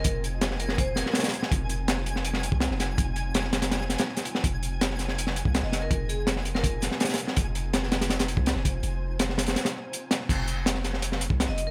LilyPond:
<<
  \new Staff \with { instrumentName = "Synth texture" } { \time 4/4 \key f \minor \tempo 4 = 164 aes''1~ | aes''1~ | aes''1~ | aes''1~ |
aes''1~ | aes''1~ | aes''1 | r1 | }
  \new Staff \with { instrumentName = "Vibraphone" } { \time 4/4 \key f \minor bes'16 r4 r16 bes'8 c''8 bes'8. r8. | r1 | r1 | r2. r16 ees''16 ees''16 bes'16 |
bes'16 r16 aes'8 r8. bes'16 r2 | r1 | r1 | r2. r16 ees''16 ees''16 bes'16 | }
  \new Staff \with { instrumentName = "Ambient pad" } { \time 4/4 \key f \minor << { aes'1 | g1~ | g1 | aes'1~ |
aes'1 | c''1~ | c''1 | aes'1 | } \\ { <c' ees' f'>1~ | <c' ees' f'>1~ | <c' ees' f'>1~ | <c' ees' f'>1~ |
<c' ees' f'>1~ | <c' ees' f'>1~ | <c' ees' f'>1 | <c' ees' f'>1 | } >> }
  \new Staff \with { instrumentName = "808-style bass" } { \clef bass \time 4/4 \key f \minor f,,2~ f,,8. r4 r16 | f,,2~ f,,8. c,8 f,,8. | f,,2~ f,,8. r4 r16 | f,,2~ f,,8. c,8 f,,8. |
f,,2~ f,,8. r4 r16 | f,,2~ f,,8. c,8 f,,8. | f,,2 r2 | f,,2~ f,,8. c,8 f,,8. | }
  \new DrumStaff \with { instrumentName = "Drums" } \drummode { \time 4/4 <hh bd>8 hh8 <hh sn>16 sn16 hh16 sn16 <hh bd>8 <hh sn>16 sn16 <hh sn>32 <hh sn>32 <hh sn>32 <hh sn>32 hh16 sn16 | <hh bd>8 hh8 <hh sn>16 sn16 hh16 sn16 hh16 sn16 hh16 bd16 <hh sn>16 sn16 <hh sn>8 | <hh bd>8 hh8 <hh sn>16 sn16 <hh sn>16 <hh sn>16 <hh sn>16 sn16 <hh sn>16 <hh sn>16 sn16 <hh sn>16 hh16 sn16 | <hh bd>8 hh8 <hh sn>16 sn16 <hh sn>16 sn16 hh16 sn16 hh16 bd16 <hh sn>16 sn16 <hh sn>8 |
<hh bd>8 hh8 <hh sn>16 sn16 hh16 sn16 <hh bd>8 <hh sn>16 sn16 <hh sn>32 <hh sn>32 <hh sn>32 <hh sn>32 hh16 sn16 | <hh bd>8 hh8 <hh sn>16 sn16 <hh sn>16 <hh sn>16 <hh sn>16 <hh sn>16 hh16 bd16 <hh sn>16 sn16 <hh bd>8 | hh4 <hh sn>16 sn16 <hh sn>16 <hh sn>16 <hh sn>16 <hh sn>8. hh8 <hh sn>16 sn16 | <cymc hh bd>8 hh8 <hh sn>16 sn16 <hh sn>16 sn16 hh16 sn16 hh16 bd16 <hh sn>16 sn16 hh8 | }
>>